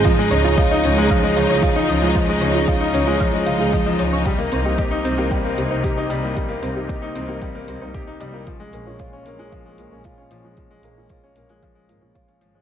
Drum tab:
HH |x-x-x-x-x-x-x-x-|x-x-x-x-x-x-x-x-|x-x-x-x-x-x-x-x-|x-x-x-x-x-x-x-x-|
BD |o---o---o---o---|o---o---o---o---|o---o---o---o---|o---o---o---o---|

HH |x-x-x-x-x-x-x-x-|x-x-x-xxx-x-xxx-|
BD |o---o---o---o---|o---o---o---o---|